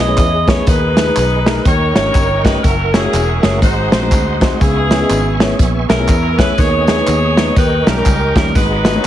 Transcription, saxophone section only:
0.00 0.64 E4 medium
0.00 0.64 G#4 medium
0.00 0.16 D#5 loud
0.17 0.46 D#5 loud
0.48 0.67 C#5 loud
0.68 1.62 D#4 medium
0.68 1.62 G#4 medium
0.68 1.66 B4 loud
1.66 1.95 G4 medium
1.66 1.95 A#4 medium
1.66 1.94 C#5 loud
1.96 2.60 G4 medium
1.96 2.61 A#4 medium
1.96 2.42 C#5 loud
2.45 2.64 B4 loud
2.64 2.93 C#4 medium
2.64 2.93 E4 medium
2.64 2.94 A#4 loud
2.94 3.59 C#4 medium
2.94 3.59 E4 medium
2.94 3.42 G#4 loud
3.43 3.61 G#4 medium
3.62 3.91 D#4 medium
3.62 3.91 F#4 medium
3.62 3.91 C5 medium
3.92 4.57 D#4 medium
3.92 4.57 F#4 medium
3.92 4.38 C5 medium
4.61 5.56 B3 medium
4.61 5.56 E4 medium
4.61 5.55 G#4 loud
5.89 6.54 E4 medium
5.89 6.35 A#4 loud
6.39 6.58 B4 loud
6.59 6.87 G#4 medium
6.59 6.87 C#5 loud
6.88 7.53 G#4 medium
6.88 7.53 C#5 loud
7.58 7.86 G4 medium
7.58 7.87 B4 loud
7.87 8.51 C#4 medium
7.87 8.51 G4 medium
7.87 8.36 A#4 loud
8.37 8.54 A#4 loud
8.56 9.07 D#4 medium
8.56 9.07 F#4 medium
8.56 9.07 B4 loud

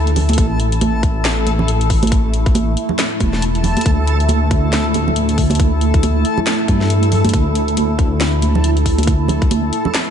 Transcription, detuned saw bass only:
0.00 0.37 D2 loud
0.38 2.45 A1 loud
2.46 2.76 A1 medium
3.20 3.75 E1 loud
3.86 5.92 D2 loud
5.94 6.24 D2 medium
6.68 7.32 G2 loud
7.33 9.40 D2 loud
9.42 9.71 D2 medium

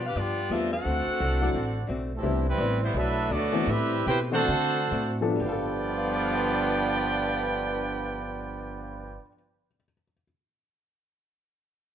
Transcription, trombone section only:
0.73 1.85 A3 medium
0.73 1.85 C4 medium
0.73 1.85 F#4 medium
2.12 2.44 C3 medium
2.12 2.44 E3 medium
2.12 2.44 A3 medium
2.47 2.79 E3 medium
2.47 2.79 G3 medium
2.47 2.79 C4 medium
2.82 2.94 E3 medium
2.82 2.94 G3 medium
2.82 2.94 C4 medium
2.94 3.30 F#3 medium
2.94 3.31 A3 medium
2.94 3.31 E4 medium
3.32 3.69 F#3 medium
3.32 3.69 A3 medium
3.32 3.69 D4 medium
3.70 4.09 G3 medium
3.70 4.06 C4 loud
3.70 4.07 E4 loud
4.08 4.19 C4 medium
4.08 4.20 E4 medium
4.08 4.19 G4 medium
4.33 5.18 A3 medium
4.33 5.19 C4 medium
4.33 5.18 F#4 medium
5.40 9.18 G2 loud
5.40 9.17 D3 loud
5.40 9.17 F3 loud
5.40 9.17 B3 loud

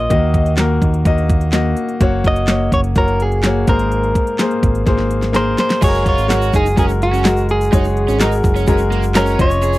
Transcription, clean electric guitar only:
0.00 0.54 D#5 medium
2.28 2.73 D#5 medium
2.74 2.80 C#5 medium
2.98 3.22 A#4 medium
3.22 3.66 G#4 medium
3.69 5.31 A#4 medium
5.36 5.59 C5 medium
5.60 5.81 C5 medium
5.84 6.08 C#5 loud
6.09 6.56 C#5 medium
6.56 6.78 G#4 medium
6.79 6.85 G#4 medium
7.03 7.46 F#4 medium
7.51 8.89 G#4 medium
9.17 9.41 A#4 medium
9.41 9.78 C#5 medium

